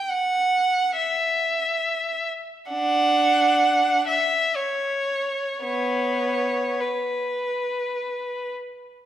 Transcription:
0.10 0.97 F#5 medium
0.97 2.27 E5 medium
2.71 4.03 D4 medium
2.71 4.02 F#5 medium
4.08 4.57 E5 medium
4.56 5.62 C#5 soft
5.63 6.76 B3 soft
5.63 6.78 C#5 medium
6.81 8.53 B4 soft

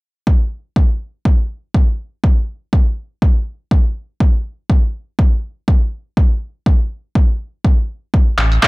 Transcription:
0.27 kick loud
0.76 kick medium
1.25 kick loud
1.74 kick medium
2.24 kick loud
2.73 kick loud
3.22 kick loud
3.71 kick loud
4.20 kick loud
4.70 kick medium
5.19 kick loud
5.68 kick loud
6.17 kick loud
6.66 kick medium
7.15 kick loud
7.65 kick loud
8.14 kick loud
8.38 8.59 A1 medium
8.38 clap medium
8.38 open hi-hat medium
8.52 closed hi-hat medium
8.63 kick medium
8.63 clap loud

